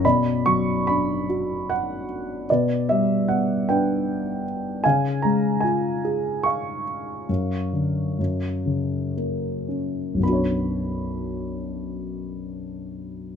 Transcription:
<<
  \new Staff \with { instrumentName = "Grand piano" } { \time 3/4 \key b \minor \tempo 4 = 73 << { b''8 cis'''8 b''4 fis''4 | d''8 e''8 fis''8 g''4. | gis''8 ais''8 gis''4 cis'''4~ | cis'''2 r4 |
b''2. | } \\ { d''4. r4. | b'4. b'4. | eis''4. r8 eis''4~ | eis''2 r4 |
r2. | } >> }
  \new Staff \with { instrumentName = "Grand piano" } { \time 3/4 \key b \minor b,8 fis8 d'8 fis'4. | b,8 g8 b8 d'4. | cis8 gis8 eis'8 gis'4. | fis,8 d8 fis,8 cis8 ais8 cis'8 |
<b,, fis, b d' fis' cis''>2. | }
>>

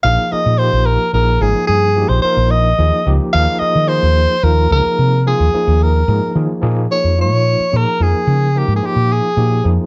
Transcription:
<<
  \new Staff \with { instrumentName = "Soprano saxophone" } { \time 6/8 \key bes \dorian \tempo 4. = 73 f''8 ees''8 c''8 bes'8 bes'8 aes'8 | aes'8. c''16 c''8 ees''4~ ees''32 r16. | f''8 ees''8 c''4 bes'8 bes'8~ | bes'8 aes'4 bes'4~ bes'32 r16. |
r8 des''8 des''4 bes'8 aes'8~ | aes'8 g'16. aes'32 g'8 aes'4~ aes'32 r16. | }
  \new Staff \with { instrumentName = "Tine electric piano" } { \time 6/8 \key bes \dorian <f bes ees' aes'>8 <f bes ees' aes'>8 <f bes ees' g'>4 <f bes ees' aes'>8 <f bes ees' aes'>8~ | <f bes ees' aes'>8 <f bes ees' g'>8 <f bes ees' bes'>4 <f bes ees' aes'>8 <f bes ees' g'>8 | <f bes ees' aes'>8 <f bes ees' aes'>8 <f bes ees' aes'>4 <f bes ees' f'>8 <f bes ees' aes'>8~ | <f bes ees' aes'>8 <f bes ees' f'>8 <f bes ees' aes'>4 <f bes ees' aes'>8 <f bes ees' aes'>8 |
<f bes ees' aes'>8 <f bes ees' aes'>8 <f bes ees' f'>4 <f bes ees' aes'>8 <f bes ees' bes'>8~ | <f bes ees' bes'>8 <f bes ees' bes'>8 <f bes ees' f'>4 <f bes ees' g'>8 <f bes ees' aes'>8 | }
  \new Staff \with { instrumentName = "Fretless electric bass" } { \clef bass \time 6/8 \key bes \dorian bes,,16 r8 bes,8 bes,,8 r16 bes,,8 aes,,16 r16 | g,8. bes,,16 r16 bes,,8. ees,16 r16 des,16 r16 | ees,16 r8 ees8 ees,8 r16 ees,8 des,16 r16 | c8. ees,16 r16 ees,8. aes,16 r16 ees16 r16 |
bes,8 r16 f,8 bes,8 r16 bes,16 r16 f,16 r16 | des8. aes,16 r16 bes,8 r16 bes,8 f,16 r16 | }
>>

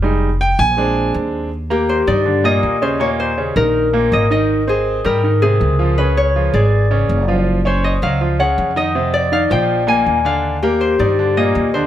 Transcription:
<<
  \new Staff \with { instrumentName = "Harp" } { \time 4/4 \key ees \major \tempo 4 = 161 r1 | r8 g'8 c''8 d''4 ees''4 c''8 | des''8 c''4 bes'4 r8 ees''8 ees''8~ | ees''8 aes'4 bes'4 aes'4 r8 |
ces''8 des''4 d''2 r8 | r8 c''8 ees''8 f''4 ges''4 ees''8 | r8 d''8 f''8 g''4 aes''4 f''8 | r8 g'8 c''8 d''4 ees''4 c''8 | }
  \new Staff \with { instrumentName = "Grand piano" } { \time 4/4 \key ees \major << { r4 g''8 aes''4. r4 | r8 <bes bes'>4 <ees ees'>8 <d d'>8 <bes, bes>4 <des des'>8 | <bes, bes>4 <des des'>8 <ees ees'>4 <bes, bes>4 <ees ees'>8~ | <ees ees'>8 <c' c''>4 <g g'>8 <ees ees'>8 <c c'>4 <f f'>8 |
<des des'>4 <f f'>8 <aes aes'>4 <des des'>4 <f f'>8~ | <f f'>8 <des' des''>4 <ges ges'>8 <f f'>8 <des des'>4 <ees ees'>8 | <c c'>4 <ees ees'>8 <f f'>4 <bes, bes>4 <d d'>8~ | <d d'>8 <bes bes'>4 <ees ees'>8 <d d'>8 <bes, bes>4 <d d'>8 | } \\ { <g aes ees'>8 r4. <aes c' d'>2 | r1 | r1 | r1 |
r1 | r1 | r1 | r1 | } >> }
  \new Staff \with { instrumentName = "Upright bass" } { \clef bass \time 4/4 \key ees \major f,,4. bes,,4. ees,4~ | ees,4. g,4. ees,4~ | ees,4. bes,,4. aes,,4~ | aes,,4. aes,4. des,4~ |
des,4. aes,,4. ges,,4~ | ges,,4. des,4. f,4~ | f,4. bes,,4. ees,4~ | ees,4. g,4. ees,4 | }
>>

